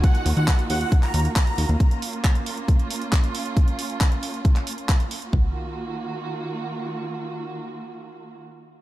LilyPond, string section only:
\new Staff \with { instrumentName = "String section" } { \time 4/4 \key ees \minor \tempo 4 = 136 << { <ees f' ges'>1 | <des' f'>1~ | <des' f'>1 | <ees bes f' ges'>1~ |
<ees bes f' ges'>1 | } \\ { bes1~ | bes1~ | bes1 | r1 |
r1 | } >> }